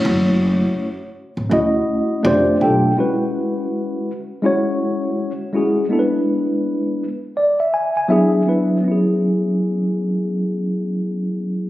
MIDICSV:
0, 0, Header, 1, 3, 480
1, 0, Start_track
1, 0, Key_signature, 4, "major"
1, 0, Tempo, 731707
1, 33, Time_signature, 4, 2, 24, 8
1, 7675, End_track
2, 0, Start_track
2, 0, Title_t, "Tine electric piano"
2, 0, Program_c, 0, 4
2, 0, Note_on_c, 0, 57, 81
2, 0, Note_on_c, 0, 61, 70
2, 0, Note_on_c, 0, 64, 74
2, 0, Note_on_c, 0, 66, 75
2, 0, Note_on_c, 0, 73, 83
2, 567, Note_off_c, 0, 57, 0
2, 570, Note_off_c, 0, 61, 0
2, 573, Note_off_c, 0, 64, 0
2, 577, Note_off_c, 0, 66, 0
2, 579, Note_off_c, 0, 73, 0
2, 980, Note_on_c, 0, 57, 80
2, 987, Note_on_c, 0, 61, 75
2, 994, Note_on_c, 0, 64, 82
2, 1000, Note_on_c, 0, 66, 75
2, 1006, Note_on_c, 0, 75, 86
2, 1456, Note_off_c, 0, 57, 0
2, 1463, Note_on_c, 0, 57, 85
2, 1469, Note_on_c, 0, 62, 79
2, 1470, Note_off_c, 0, 61, 0
2, 1473, Note_off_c, 0, 64, 0
2, 1474, Note_on_c, 0, 74, 67
2, 1475, Note_on_c, 0, 65, 76
2, 1476, Note_off_c, 0, 66, 0
2, 1479, Note_off_c, 0, 75, 0
2, 1481, Note_on_c, 0, 67, 79
2, 1487, Note_on_c, 0, 72, 96
2, 1671, Note_off_c, 0, 57, 0
2, 1674, Note_off_c, 0, 62, 0
2, 1677, Note_off_c, 0, 65, 0
2, 1680, Note_off_c, 0, 67, 0
2, 1683, Note_off_c, 0, 72, 0
2, 1697, Note_off_c, 0, 74, 0
2, 1705, Note_on_c, 0, 57, 73
2, 1712, Note_on_c, 0, 62, 62
2, 1716, Note_on_c, 0, 79, 60
2, 1717, Note_on_c, 0, 65, 65
2, 1723, Note_on_c, 0, 67, 67
2, 1731, Note_on_c, 0, 69, 75
2, 1906, Note_off_c, 0, 57, 0
2, 1909, Note_off_c, 0, 62, 0
2, 1912, Note_off_c, 0, 65, 0
2, 1915, Note_off_c, 0, 67, 0
2, 1919, Note_off_c, 0, 69, 0
2, 1938, Note_off_c, 0, 79, 0
2, 1945, Note_on_c, 0, 56, 74
2, 1951, Note_on_c, 0, 61, 63
2, 1957, Note_on_c, 0, 64, 70
2, 1962, Note_on_c, 0, 66, 72
2, 1969, Note_on_c, 0, 71, 79
2, 2689, Note_off_c, 0, 56, 0
2, 2692, Note_off_c, 0, 61, 0
2, 2695, Note_off_c, 0, 64, 0
2, 2697, Note_off_c, 0, 66, 0
2, 2701, Note_off_c, 0, 71, 0
2, 2902, Note_on_c, 0, 56, 82
2, 2909, Note_on_c, 0, 61, 74
2, 2913, Note_on_c, 0, 64, 76
2, 2920, Note_on_c, 0, 66, 81
2, 2927, Note_on_c, 0, 73, 93
2, 3477, Note_off_c, 0, 56, 0
2, 3480, Note_off_c, 0, 61, 0
2, 3482, Note_off_c, 0, 64, 0
2, 3486, Note_off_c, 0, 66, 0
2, 3489, Note_off_c, 0, 73, 0
2, 3626, Note_on_c, 0, 56, 69
2, 3631, Note_on_c, 0, 61, 59
2, 3638, Note_on_c, 0, 64, 64
2, 3643, Note_on_c, 0, 66, 64
2, 3650, Note_on_c, 0, 68, 71
2, 3827, Note_off_c, 0, 56, 0
2, 3829, Note_off_c, 0, 61, 0
2, 3833, Note_off_c, 0, 64, 0
2, 3835, Note_off_c, 0, 66, 0
2, 3839, Note_off_c, 0, 68, 0
2, 3864, Note_on_c, 0, 56, 67
2, 3871, Note_on_c, 0, 59, 63
2, 3877, Note_on_c, 0, 62, 63
2, 3883, Note_on_c, 0, 64, 65
2, 3889, Note_on_c, 0, 69, 59
2, 3930, Note_on_c, 0, 71, 75
2, 3934, Note_off_c, 0, 69, 0
2, 4608, Note_off_c, 0, 56, 0
2, 4612, Note_off_c, 0, 59, 0
2, 4615, Note_off_c, 0, 62, 0
2, 4618, Note_off_c, 0, 64, 0
2, 4642, Note_off_c, 0, 71, 0
2, 4834, Note_on_c, 0, 74, 60
2, 4975, Note_off_c, 0, 74, 0
2, 4985, Note_on_c, 0, 76, 56
2, 5076, Note_on_c, 0, 80, 60
2, 5211, Note_off_c, 0, 76, 0
2, 5221, Note_off_c, 0, 80, 0
2, 5229, Note_on_c, 0, 80, 59
2, 5303, Note_on_c, 0, 54, 85
2, 5308, Note_on_c, 0, 59, 72
2, 5314, Note_on_c, 0, 62, 72
2, 5315, Note_on_c, 0, 76, 66
2, 5320, Note_on_c, 0, 64, 77
2, 5326, Note_on_c, 0, 68, 93
2, 5453, Note_off_c, 0, 80, 0
2, 5511, Note_off_c, 0, 54, 0
2, 5514, Note_off_c, 0, 59, 0
2, 5517, Note_off_c, 0, 62, 0
2, 5520, Note_off_c, 0, 64, 0
2, 5523, Note_off_c, 0, 68, 0
2, 5545, Note_on_c, 0, 54, 64
2, 5551, Note_on_c, 0, 59, 59
2, 5558, Note_on_c, 0, 62, 58
2, 5564, Note_on_c, 0, 64, 61
2, 5570, Note_on_c, 0, 71, 70
2, 5743, Note_off_c, 0, 54, 0
2, 5749, Note_off_c, 0, 59, 0
2, 5751, Note_on_c, 0, 54, 64
2, 5753, Note_off_c, 0, 62, 0
2, 5755, Note_off_c, 0, 64, 0
2, 5759, Note_off_c, 0, 71, 0
2, 5768, Note_off_c, 0, 76, 0
2, 5775, Note_on_c, 0, 59, 57
2, 5801, Note_on_c, 0, 61, 57
2, 5824, Note_on_c, 0, 64, 58
2, 5848, Note_on_c, 0, 68, 63
2, 7675, Note_off_c, 0, 54, 0
2, 7675, Note_off_c, 0, 59, 0
2, 7675, Note_off_c, 0, 61, 0
2, 7675, Note_off_c, 0, 64, 0
2, 7675, Note_off_c, 0, 68, 0
2, 7675, End_track
3, 0, Start_track
3, 0, Title_t, "Upright bass"
3, 0, Program_c, 1, 32
3, 32, Note_on_c, 1, 30, 100
3, 414, Note_off_c, 1, 30, 0
3, 899, Note_on_c, 1, 33, 73
3, 973, Note_off_c, 1, 33, 0
3, 992, Note_on_c, 1, 37, 82
3, 1183, Note_off_c, 1, 37, 0
3, 1474, Note_on_c, 1, 29, 106
3, 1664, Note_off_c, 1, 29, 0
3, 1713, Note_on_c, 1, 35, 80
3, 1903, Note_off_c, 1, 35, 0
3, 7675, End_track
0, 0, End_of_file